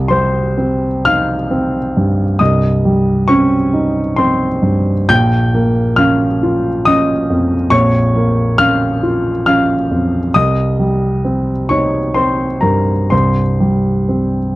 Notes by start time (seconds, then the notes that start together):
Already playing: C2
0.08 G3 C5 C6
0.57 C4
1.05 D#4 F5 F6
1.51 C4
1.97 G2
2.39 C2 D#5 D#6
2.85 G3
3.28 C4 C#4 C#6
3.73 D#4
4.16 C4 C5 C6
4.62 G2
5.09 A#1 G5 G6
5.54 A#3
5.96 C#4 F5 F6
6.43 F4
6.85 C#4 D#5 D#6
7.30 F2
7.70 A#1 C#5 C#6
8.16 A#3
8.58 C#4 F5 F6
9.03 F4
9.46 C#4 F5 F6
9.91 F2
10.34 C2 D#5 D#6
10.79 G3
11.25 C4
11.69 D#4 C#5 C#6
12.14 C4 C5 C6
12.61 G2 A#4 A#5
13.10 C2 C5 C6
13.60 G3
14.09 C4